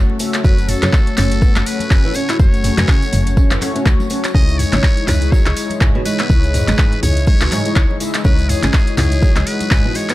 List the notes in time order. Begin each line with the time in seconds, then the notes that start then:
Already playing: C#3 F#3 A3 C#4 F#4 A4 C#5
0.09 muted conga, high conga
0.19 A3 C#4 F#4 E5, open hi-hat, tambourine
0.34 clap, closed hi-hat, tambourine
0.44 F#1 F#3 A3 C#4 F#4 B4 C#5, kick, tambourine, muted conga, high conga
0.58 closed hi-hat, tambourine
0.68 A4, mid tom, open hi-hat, tambourine
0.82 F#2 F#3, clap, closed hi-hat, tambourine, muted conga, high conga, low conga
0.93 kick, clap, tambourine
1.07 closed hi-hat
1.17 F#1 C#4 A4, clap, mid tom, open hi-hat, tambourine, muted conga, low conga
1.31 closed hi-hat, tambourine
1.42 B3, kick, tambourine, high conga
1.56 F#1, clap, closed hi-hat, tambourine, high conga
1.66 A3 C#4 F#4 B4 C#5, open hi-hat, tambourine, muted conga
1.80 closed hi-hat, tambourine, high conga
1.91 F#1 C#3, kick, clap, tambourine
2.04 E3, muted conga
2.14 C#4 C#5, open hi-hat, tambourine
2.29 E4, clap, closed hi-hat, tambourine
2.39 F#1 A3 C#4 F#4 C#5, kick, tambourine, muted conga, high conga
2.54 closed hi-hat, tambourine
2.64 C#3, mid tom, open hi-hat, tambourine
2.78 F#2 E3, clap, closed hi-hat, tambourine, muted conga, high conga, low conga
2.88 C#3, kick, clap, tambourine, low conga
3.02 closed hi-hat, tambourine
3.13 F#1, mid tom, open hi-hat, tambourine, muted conga, high conga, low conga
3.27 closed hi-hat, tambourine
3.37 C#4, kick, tambourine, high conga
3.51 F#1 E3, clap, closed hi-hat, tambourine
3.61 C#3 A3 C#4 F#4 C#5, clap, open hi-hat, tambourine, muted conga, high conga
3.75 C#4, closed hi-hat, tambourine
3.86 C#2, kick, clap, tambourine
4.00 tambourine, muted conga, high conga
4.10 A3 C#4 F#4 C#5, open hi-hat, tambourine
4.24 clap, closed hi-hat, tambourine
4.34 C#2 C#3 E3 G#3 D#4 E4 C#5 D#5, kick, tambourine, muted conga, high conga
4.49 closed hi-hat, tambourine
4.59 C#5, mid tom, open hi-hat, tambourine
4.72 G#1 C#3, clap, closed hi-hat, tambourine, muted conga, high conga, low conga
4.83 kick, clap, tambourine
4.97 closed hi-hat
5.07 C#2 G#3 B4, clap, mid tom, open hi-hat, tambourine, muted conga, low conga
5.21 closed hi-hat, tambourine
5.32 F#3 C#5, kick, tambourine, high conga
5.46 C#2, clap, closed hi-hat, tambourine, high conga
5.56 G#3 D#4 E4 C#5, open hi-hat, tambourine, muted conga
5.70 closed hi-hat, tambourine, high conga
5.81 C#2 G#2, kick, clap, tambourine
5.95 B2, muted conga
6.05 G#3 B4, open hi-hat, tambourine
6.19 B3, clap, closed hi-hat, tambourine
6.30 C#2 G#3 D#4 E4 C#5, kick, tambourine, muted conga, high conga
6.43 closed hi-hat, tambourine
6.54 G#2, mid tom, open hi-hat, tambourine
6.68 G#1 G#3, clap, closed hi-hat, tambourine, muted conga, high conga, low conga
6.79 G#2, kick, clap, tambourine
6.93 closed hi-hat
7.03 C#2 C#5, mid tom, open hi-hat, tambourine, muted conga, high conga, low conga
7.17 closed hi-hat, tambourine
7.27 G#3 C#5, kick, tambourine, high conga
7.41 C#2 B2, clap, closed hi-hat, tambourine
7.52 G#2 G#3 D#4 E4 C#5, clap, open hi-hat, tambourine, muted conga, high conga
7.65 G#3, closed hi-hat, tambourine
7.76 C#2, kick, clap, tambourine
7.90 muted conga, high conga
8.00 G#3 D#4 E4 E5, open hi-hat, tambourine
8.14 clap, closed hi-hat, tambourine
8.24 C#2 C#3 G#3 D#4 E4 F#4 B4 C#5, kick, tambourine, muted conga, high conga
8.38 closed hi-hat, tambourine
8.49 G#4, mid tom, open hi-hat, tambourine
8.63 G#1 C#3, clap, closed hi-hat, tambourine, muted conga, high conga, low conga
8.74 kick, clap, tambourine
8.87 closed hi-hat
8.97 C#2 G#3 G#4, clap, mid tom, open hi-hat, tambourine, muted conga, low conga
9.12 closed hi-hat, tambourine
9.22 F#3, kick, tambourine, high conga
9.36 C#2, clap, closed hi-hat, tambourine, high conga
9.46 G#3 D#4 E4 B4 C#5, open hi-hat, tambourine, muted conga
9.61 closed hi-hat, tambourine, high conga
9.71 C#2 G#2, kick, clap, tambourine
9.85 B2, muted conga
9.95 G#3 C#5, open hi-hat, tambourine
10.09 B3, clap, closed hi-hat, tambourine